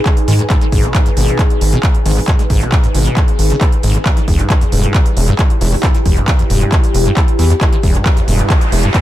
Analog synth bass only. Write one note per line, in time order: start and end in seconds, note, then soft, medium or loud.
0.28 0.41 G#2 loud
0.72 0.86 G#1 loud
1.17 1.30 G#1 medium
1.61 1.75 G#1 medium
2.06 2.19 G#1 loud
2.50 2.64 G#1 loud
2.95 3.08 G#1 medium
3.39 3.53 G#1 medium
3.83 3.97 G#1 loud
4.28 4.41 E1 medium
4.72 4.86 E1 medium
5.17 5.30 E1 medium
5.61 5.75 E1 loud
6.06 6.19 E1 loud
6.50 6.64 E1 medium
6.94 7.08 E1 medium
7.39 7.53 E2 loud
7.83 7.97 E1 medium
8.28 8.41 E1 medium
8.72 8.86 E1 medium